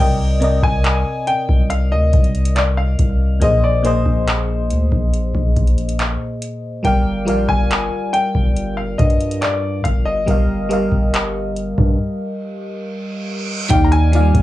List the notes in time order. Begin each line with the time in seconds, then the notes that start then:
Already playing: C3
0.00 C2 C4 A#4 D5 D#5 G5
0.40 C3 C4 A#4 D5, closed hi-hat
0.44 D#5
0.63 C2 G#5, kick
0.84 clap, closed hi-hat
1.27 G5, closed hi-hat
1.49 C2, kick
1.70 F5, closed hi-hat
1.92 D2 D#5
2.13 C2, kick, closed hi-hat
2.24 closed hi-hat
2.35 closed hi-hat
2.45 closed hi-hat
2.56 D5, clap, closed hi-hat
2.77 F5
2.99 C2, kick, closed hi-hat
3.40 A#1 A#2 A#3 G#4 C5 D#5, kick, closed hi-hat
3.44 D#5
3.64 D5
3.83 A#2 A#3 G#4 C5, closed hi-hat
3.87 D#5
4.06 A#1, kick
4.28 clap, closed hi-hat
4.70 D2, closed hi-hat
4.92 A#1, kick
5.14 closed hi-hat
5.35 A#1, kick
5.56 kick, closed hi-hat
5.67 closed hi-hat
5.78 closed hi-hat
5.89 closed hi-hat
5.99 clap, closed hi-hat
6.42 closed hi-hat
6.83 G1 G3 G4 A#4 D5 G5, kick, closed hi-hat
6.87 F5
7.25 A#1 G3 F4 A#4 D5, closed hi-hat
7.30 F5
7.49 G1 G#5, kick
7.71 clap, closed hi-hat
8.13 G5, closed hi-hat
8.35 G1, kick
8.56 closed hi-hat
8.77 F5
8.98 G2 D#5, kick, closed hi-hat
9.10 closed hi-hat
9.20 closed hi-hat
9.31 closed hi-hat
9.41 D5, clap, closed hi-hat
9.84 G1 F5, kick, closed hi-hat
10.05 D#5
10.26 G1 G3 G4 A#4 D#5, kick, closed hi-hat
10.31 F5
10.69 G3 G4 A#4 D#5, closed hi-hat
10.73 F5
10.92 G1, kick
11.14 clap, closed hi-hat
11.56 closed hi-hat
11.78 G2, kick
11.99 reverse cymbal
13.69 D#2 D#3 D#4 G4 D5 G5, kick, closed hi-hat
13.73 F5
13.84 A#5
13.92 G#5, closed hi-hat
14.12 D#3 D#4 F4 D5, closed hi-hat
14.16 F5
14.20 G3
14.34 D#2, kick, closed hi-hat